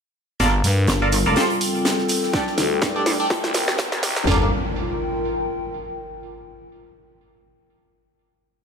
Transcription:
0.40 fm bass G1, analog synth pad G3 D4 F4 A#4, ambient pad F4, synth stab F4 A4 A#4 D5, snare, closed hi-hat, riser
0.64 fm bass G2, snare, closed hi-hat, open hi-hat
0.84 ambient pad G5, closed hi-hat
0.88 wobble bass G1, snare
1.02 synth stab F4 A4 A#4 D5
1.12 closed hi-hat, open hi-hat
1.26 wobble bass F1, synth stab F4 A4 A#4 D5
1.36 analog synth pad C4 A4, synth stab F4 G4 A4 C5, snare, closed hi-hat
1.50 closed hi-hat
1.61 closed hi-hat, open hi-hat
1.74 closed hi-hat
1.81 ambient pad A4
1.85 snare, closed hi-hat
1.98 snare
2.08 snare, closed hi-hat, open hi-hat
2.23 snare
2.33 analog synth pad G3 A3 D4, ambient pad D4, synth stab D4 G4 A4 D5, kick, snare, closed hi-hat
2.47 snare
2.58 fm bass D2, snare, closed hi-hat, open hi-hat
2.82 wobble bass G2, kick, snare, closed hi-hat
2.96 synth stab D4 G4 A4 D5
3.06 snare, closed hi-hat, open hi-hat
3.20 synth stab D4 G4 A4 D5
3.30 analog synth pad C4 D#4 A#4, ambient pad D#4, kick, snare, closed hi-hat
3.44 fm bass C2, snare
3.53 ambient pad A#5, snare, closed hi-hat, open hi-hat
3.68 wobble bass D#2, snare
3.78 kick, snare, closed hi-hat
3.92 snare, closed hi-hat
4.03 fm bass C2, snare, closed hi-hat, open hi-hat
4.16 snare
4.27 fm bass G1, analog synth pad G3 D4 F4 A#4, ambient pad F4, synth stab F4 A4 A#4 D5, snare, floor tom, impact
4.35 ambient pad A#4
4.43 ambient pad G5

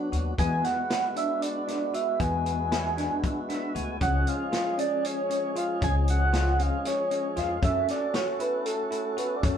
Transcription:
Already playing: tonewheel organ F#3 B3 D4 F#4, analog synth lead F#5
0.12 upright bass D#2, tine electric piano F#4, closed hi-hat
0.38 upright bass E2, tonewheel organ G#3 B3 E4 F#4, tine electric piano B3, analog synth lead G#5, kick, closed hi-hat
0.64 analog synth lead F#5, snare, closed hi-hat
0.90 tine electric piano E4, snare, closed hi-hat
1.16 tine electric piano D4, analog synth lead E5, closed hi-hat
1.42 analog synth lead D5, closed hi-hat
1.68 tine electric piano D4, snare, closed hi-hat
1.94 tine electric piano F#4, analog synth lead E5, closed hi-hat
2.20 upright bass E2, tine electric piano B3, analog synth lead G#5, kick, closed hi-hat
2.46 closed hi-hat
2.72 tine electric piano E4, snare, closed hi-hat
2.98 tine electric piano D4, snare, closed hi-hat
3.24 kick, closed hi-hat
3.49 tine electric piano D4, tonewheel organ E5, snare, closed hi-hat
3.75 upright bass D2, tine electric piano F#4, tonewheel organ G#5, closed hi-hat
4.01 upright bass C#2, tonewheel organ F3 G#3 C#4 G#4, tine electric piano C#4, analog synth lead F#5, kick, closed hi-hat
4.27 analog synth lead F5, closed hi-hat
4.52 tine electric piano F4, snare, closed hi-hat
4.78 tine electric piano C#4, analog synth lead D5, closed hi-hat
5.04 analog synth lead C#5, closed hi-hat
5.30 tine electric piano C#4, closed hi-hat
5.56 tine electric piano F4, analog synth lead F5, closed hi-hat
5.81 upright bass C#2, tine electric piano C#4, analog synth lead G#5, kick, closed hi-hat
6.08 analog synth lead F#5, closed hi-hat
6.33 tine electric piano F4, snare, closed hi-hat
6.59 tine electric piano C#4, analog synth lead F5, closed hi-hat
6.85 analog synth lead C#5, snare, closed hi-hat
7.11 tine electric piano C#4, closed hi-hat
7.36 upright bass F2, tine electric piano F4, analog synth lead F5, snare, closed hi-hat
7.62 upright bass F#2, tonewheel organ A3 C#4 F#4 A4, tine electric piano C#4, analog synth lead E5, kick, closed hi-hat
7.88 analog synth lead D5, snare, closed hi-hat
8.14 tine electric piano F#4, analog synth lead C#5, snare, closed hi-hat
8.40 tine electric piano E4, analog synth lead B4, closed hi-hat
8.66 analog synth lead A4, closed hi-hat
8.91 tine electric piano E4, closed hi-hat
9.17 tine electric piano F#4, analog synth lead B4, closed hi-hat
9.36 analog synth lead D5
9.43 upright bass F#2, tine electric piano C#4, analog synth lead C#5, kick, closed hi-hat

